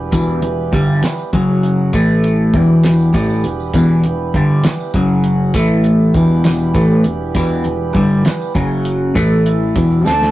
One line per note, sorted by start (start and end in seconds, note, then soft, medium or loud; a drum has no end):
0.00 0.11 E1 medium
0.00 1.30 E3 medium
0.00 1.30 G3 medium
0.00 1.30 B3 medium
0.00 1.31 G4 medium
0.00 1.31 B4 medium
0.12 0.41 E1 medium
0.12 0.41 E2 medium
0.12 0.41 B2 loud
0.12 0.42 E3 loud
0.12 kick loud
0.12 closed hi-hat medium
0.12 tambourine loud
0.42 0.71 E1 medium
0.42 0.66 E2 medium
0.42 0.67 B2 medium
0.42 closed hi-hat medium
0.72 1.01 G1 medium
0.72 1.02 G2 medium
0.72 1.02 D3 loud
0.72 1.03 G3 loud
0.72 kick loud
0.72 closed hi-hat medium
1.03 muted clean electric guitar stroke medium
1.03 muted picked electric bass stroke soft
1.03 snare loud
1.03 closed hi-hat medium
1.03 tambourine medium
1.19 tambourine soft
1.33 1.89 F#1 medium
1.33 1.92 F#2 medium
1.33 1.93 C#3 medium
1.33 1.92 F#3 medium
1.33 1.93 F#3 loud
1.33 1.93 C#4 medium
1.33 1.93 F#4 medium
1.33 1.93 F#5 medium
1.33 kick loud
1.33 closed hi-hat medium
1.63 closed hi-hat medium
1.93 2.50 A1 medium
1.93 2.53 A2 medium
1.93 2.53 E3 medium
1.93 2.53 A3 medium
1.93 2.53 A3 loud
1.93 2.53 E4 medium
1.93 2.53 A4 medium
1.93 kick medium
1.93 closed hi-hat medium
1.93 tambourine medium
2.24 closed hi-hat medium
2.24 tambourine soft
2.53 3.10 E1 medium
2.53 3.13 E2 medium
2.53 3.12 B2 loud
2.53 4.92 E3 medium
2.53 3.13 E3 loud
2.53 4.92 G3 medium
2.53 4.92 B3 medium
2.53 4.92 G4 medium
2.53 4.92 B4 medium
2.53 kick loud
2.53 closed hi-hat medium
2.53 tambourine soft
2.84 snare loud
2.84 closed hi-hat medium
2.84 tambourine medium
2.98 tambourine soft
3.13 3.42 A1 medium
3.13 3.43 A2 medium
3.13 3.43 E3 medium
3.13 3.43 A3 loud
3.13 kick loud
3.13 closed hi-hat medium
3.30 tambourine soft
3.44 3.72 E1 medium
3.44 3.68 E2 medium
3.44 3.68 B2 medium
3.44 closed hi-hat medium
3.44 tambourine soft
3.60 tambourine soft
3.74 4.02 E1 medium
3.74 4.03 E2 medium
3.74 4.03 B2 medium
3.74 4.04 E3 loud
3.74 kick loud
3.74 closed hi-hat loud
3.74 tambourine medium
4.04 4.32 E1 medium
4.04 4.29 E2 medium
4.04 4.29 B2 medium
4.04 closed hi-hat medium
4.34 4.62 G1 medium
4.34 4.64 G2 medium
4.34 4.64 D3 medium
4.34 4.64 G3 loud
4.34 kick loud
4.34 closed hi-hat medium
4.64 muted picked electric bass stroke soft
4.64 muted clean electric guitar stroke medium
4.64 snare loud
4.64 closed hi-hat medium
4.64 tambourine medium
4.80 tambourine soft
4.94 5.50 F#1 medium
4.94 5.54 F#2 medium
4.94 5.54 C#3 medium
4.94 5.54 F#3 medium
4.94 5.54 C#4 medium
4.94 5.54 F#4 medium
4.94 5.54 F#5 medium
4.94 kick loud
4.94 closed hi-hat medium
5.24 closed hi-hat medium
5.54 6.11 A1 medium
5.54 6.14 A2 medium
5.54 6.14 E3 medium
5.54 6.15 A3 medium
5.54 6.14 A3 loud
5.54 6.14 E4 medium
5.54 6.15 A4 medium
5.54 kick loud
5.54 closed hi-hat medium
5.54 tambourine medium
5.84 closed hi-hat medium
6.14 6.71 E1 medium
6.14 6.74 E2 medium
6.14 6.74 B2 loud
6.14 8.53 E3 medium
6.14 6.74 E3 loud
6.14 8.53 G3 medium
6.14 8.53 B3 medium
6.14 8.53 G4 medium
6.14 8.53 B4 medium
6.14 kick loud
6.14 closed hi-hat medium
6.44 snare loud
6.44 closed hi-hat medium
6.44 tambourine medium
6.60 tambourine soft
6.74 7.03 A1 loud
6.74 7.04 A2 medium
6.74 7.04 E3 medium
6.74 7.04 A3 loud
6.74 kick loud
6.74 closed hi-hat medium
7.04 7.33 E1 medium
7.04 7.29 E2 medium
7.04 closed hi-hat medium
7.35 7.63 E1 medium
7.35 7.64 E2 medium
7.35 7.65 B2 medium
7.35 7.65 E3 loud
7.35 kick loud
7.35 closed hi-hat medium
7.35 tambourine medium
7.64 7.93 E1 medium
7.64 7.89 E2 medium
7.64 7.90 B2 medium
7.64 closed hi-hat medium
7.94 8.23 G1 medium
7.94 8.24 G2 medium
7.94 8.25 D3 medium
7.94 8.25 G3 loud
7.94 kick loud
7.94 closed hi-hat medium
8.25 muted clean electric guitar stroke medium
8.25 muted picked electric bass stroke soft
8.25 snare loud
8.25 closed hi-hat medium
8.25 tambourine medium
8.41 tambourine soft
8.54 9.11 F#1 medium
8.54 9.14 F#2 medium
8.54 9.14 C#3 medium
8.54 9.15 C#3 medium
8.54 9.15 F#3 medium
8.54 9.16 F#3 medium
8.54 9.16 C#4 medium
8.54 9.16 F#4 medium
8.54 9.16 F#5 medium
8.54 kick loud
8.54 closed hi-hat medium
8.85 closed hi-hat medium
9.14 9.72 A1 medium
9.14 9.74 A2 medium
9.14 9.75 E3 medium
9.14 9.75 A3 loud
9.14 10.05 E4 medium
9.14 9.76 A4 medium
9.14 10.05 E5 medium
9.14 kick loud
9.14 closed hi-hat medium
9.14 tambourine medium
9.46 closed hi-hat medium
9.75 10.04 E1 medium
9.75 10.04 E2 medium
9.75 10.06 B2 medium
9.75 10.06 E3 loud
9.75 10.06 G3 medium
9.75 10.06 B3 medium
9.75 10.06 B4 medium
9.75 kick loud
9.75 closed hi-hat medium
10.06 10.31 D2 medium
10.06 10.31 D3 medium
10.06 10.31 A3 medium
10.06 10.31 D4 medium
10.06 10.31 A4 medium
10.06 10.31 D5 medium
10.06 10.31 A5 loud
10.06 snare medium
10.06 tambourine loud
10.22 snare medium